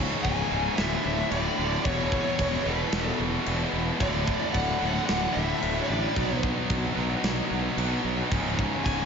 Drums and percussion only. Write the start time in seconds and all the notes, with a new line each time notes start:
0.24 kick, crash
0.78 snare, crash
1.31 crash
1.85 kick, crash
2.12 kick
2.39 kick, crash
2.92 snare, crash
3.46 crash
4.00 kick, crash
4.28 kick
4.54 kick, crash
5.08 snare, crash
5.62 crash
6.16 kick, crash
6.43 kick
6.70 kick, crash
7.24 snare, crash
7.78 crash
8.32 kick, crash
8.59 kick
8.86 kick, crash